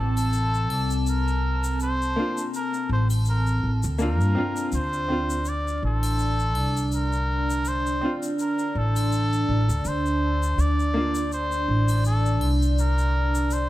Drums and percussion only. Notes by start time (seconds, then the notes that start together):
0.17 triangle, shaker
0.33 shaker
0.54 shaker
0.70 triangle
0.91 shaker
1.07 shaker
1.28 shaker
1.64 shaker
1.80 shaker
2.02 shaker
2.37 shaker
2.54 shaker
2.74 shaker
3.10 triangle, shaker
3.25 shaker
3.47 shaker
3.83 shaker
3.99 shaker
4.21 shaker
4.56 shaker
4.72 shaker
4.93 shaker
5.30 shaker
5.45 shaker
5.68 shaker
6.03 triangle, shaker
6.19 shaker
6.39 shaker
6.55 triangle
6.77 shaker
6.92 shaker
7.13 shaker
7.50 shaker
7.65 shaker
7.86 shaker
8.23 shaker
8.39 shaker
8.59 shaker
8.96 triangle, shaker
9.12 shaker
9.33 shaker
9.69 shaker
9.85 shaker
10.06 shaker
10.43 shaker
10.59 shaker
10.79 shaker
11.15 shaker
11.32 shaker
11.52 shaker
11.88 triangle, shaker
12.05 shaker
12.26 shaker
12.41 triangle
12.62 shaker
12.78 shaker
12.98 shaker
13.35 shaker
13.51 shaker